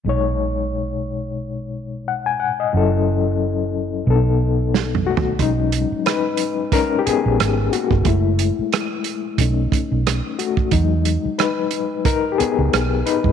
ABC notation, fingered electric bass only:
X:1
M:4/4
L:1/16
Q:"Swing 16ths" 1/4=90
K:B
V:1 name="Fingered electric bass" clef=bass
B,,,16 | F,,,8 B,,,8 | B,,,3 z8 A,,, G,,,2 z =G,,, | F,,,3 z4 z B,,,2 z B,,,2 z3 |
E,,3 z8 C,, B,,,2 z =G,, |]